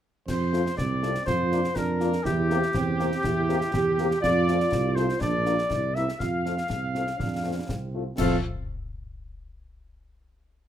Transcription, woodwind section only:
0.28 0.74 C5 medium
0.78 1.27 D5 medium
1.26 1.72 C5 medium
1.76 2.25 A#4 medium
2.25 4.19 G4 medium
4.22 4.92 D5 medium
4.95 5.20 C5 medium
5.19 5.94 D5 medium
5.94 6.20 E5 medium
6.19 7.88 F5 medium
8.17 8.38 A4 medium

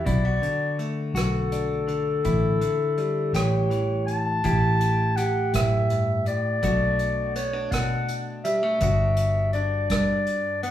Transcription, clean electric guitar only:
0.00 1.52 B3 soft
0.06 0.42 B2 medium
0.06 0.25 E4 medium
0.25 1.14 F#4 soft
0.42 1.86 D3 medium
0.79 2.97 A3 soft
1.15 2.20 F#4 medium
1.52 2.20 D4 soft
1.88 2.60 D3 soft
2.25 2.61 A2 medium
2.25 3.34 E4 soft
2.61 3.34 D3 medium
2.98 4.08 G3 soft
3.34 4.43 A2 medium
3.34 4.40 G4 medium
3.70 4.39 E3 soft
4.44 6.25 A2 medium
4.44 6.59 E4 medium
4.44 5.17 G4 medium
5.18 6.59 G4 medium
5.54 5.90 F#2 medium
5.91 6.27 G2 medium
6.26 6.62 A2 medium
6.63 8.76 B2 medium
6.63 8.44 A3 medium
6.63 7.35 D4 medium
6.63 8.77 F#4 medium
7.36 7.53 B3 medium
7.53 8.80 D4 soft
8.45 8.63 G3 medium
8.63 8.81 A3 soft
8.81 10.71 G2 medium
8.81 10.62 B3 medium
8.81 9.54 D4 medium
8.81 10.71 F#4 medium
9.55 10.71 D4 medium
10.63 10.71 B3 soft

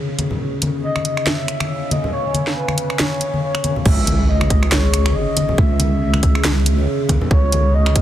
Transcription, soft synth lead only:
0.83 1.04 D#5 loud
1.05 1.28 D#5 loud
1.27 1.93 E5 loud
1.92 2.12 D#5 loud
2.13 2.53 C#5 loud
2.56 2.76 B4 medium
2.78 2.98 B4 medium
3.00 3.40 C#5 medium
3.43 3.74 C#5 medium
3.85 4.26 E5 loud
4.29 4.69 D#5 loud
4.72 5.16 C#5 loud
5.15 5.60 D#5 loud
5.58 6.01 E5 loud
6.01 6.41 E5 medium
7.31 7.76 C#5 loud
7.74 8.02 D#5 loud

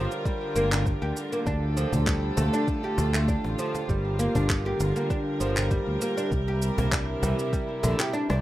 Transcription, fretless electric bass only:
0.56 0.93 G1 loud
1.02 1.11 D2 medium
1.47 1.84 D2 loud
1.93 2.30 D2 medium
2.38 2.48 D2 medium
2.98 3.36 D2 loud
3.45 3.54 A1 medium
3.89 4.27 G1 loud
4.36 4.72 G1 loud
4.80 4.91 G1 loud
5.41 5.78 G1 loud
5.87 5.97 D2 medium
6.32 6.69 C2 loud
6.78 7.15 C2 medium
7.22 7.33 C2 loud
7.83 7.94 A#1 medium
8.30 8.39 C2 medium

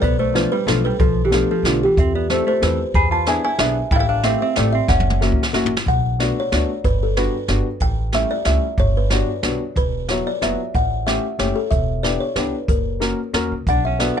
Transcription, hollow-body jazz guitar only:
0.03 0.19 B3 medium
0.20 0.34 A3 medium
0.35 0.51 F3 medium
0.53 0.67 G3 medium
0.68 0.84 F3 medium
0.86 0.99 G3 medium
1.00 1.23 F3 medium
1.25 1.32 E3 medium
1.34 1.49 F3 medium
1.51 1.65 F3 medium
1.68 1.82 D3 medium
1.85 1.98 E3 medium
1.99 2.14 C4 medium
2.15 2.29 B3 medium
2.30 2.46 A3 medium
2.47 2.61 A3 medium
2.63 2.79 E3 medium
2.96 3.11 G#4 medium
3.11 3.26 F4 medium
3.28 3.44 E4 medium
3.45 3.59 E4 medium
3.61 3.76 B3 medium
3.93 3.99 D4 medium
3.93 3.96 E4 medium
3.99 4.08 E4 medium
4.09 4.23 D4 medium
4.25 4.40 C4 medium
4.42 4.56 C4 medium
4.59 4.74 A3 medium
4.75 4.89 C4 medium
4.90 5.68 C#4 medium
13.70 13.84 D4 medium
13.86 14.00 C#4 medium
14.01 14.16 B3 medium

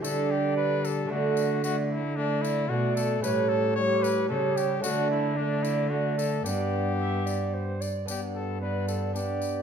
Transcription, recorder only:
0.03 0.86 D5 medium
1.10 1.62 D5 medium
1.63 1.97 D5 medium
2.17 2.66 D5 medium
2.70 3.22 D5 medium
3.23 3.75 C#5 medium
3.77 3.83 D5 medium
3.82 4.29 C#5 medium
4.30 4.81 C#5 medium
4.82 5.35 D5 medium
5.36 5.89 D5 medium
5.90 6.43 D5 medium
6.45 6.93 D5 medium
6.99 7.27 E5 medium
7.26 7.55 D5 medium
7.54 7.82 C5 medium
7.81 8.08 D5 medium
8.08 8.38 D5 medium
8.62 9.14 D5 medium
9.14 9.62 D5 medium

